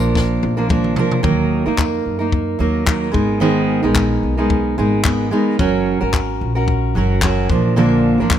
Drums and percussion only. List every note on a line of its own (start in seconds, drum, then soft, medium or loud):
0.15 kick medium
0.15 snare medium
0.43 high tom medium
0.70 kick loud
0.70 mid tom medium
0.84 mid tom medium
0.96 floor tom medium
1.11 floor tom medium
1.24 kick loud
1.78 kick medium
1.78 clap medium
2.32 kick medium
2.87 kick loud
2.87 clap loud
3.14 kick medium
3.95 kick medium
3.95 clap loud
4.50 kick medium
5.04 kick loud
5.04 clap loud
5.59 kick loud
6.13 kick medium
6.13 clap medium
6.68 kick medium
7.22 kick loud
7.22 clap loud
7.50 kick medium
8.30 kick loud
8.30 clap medium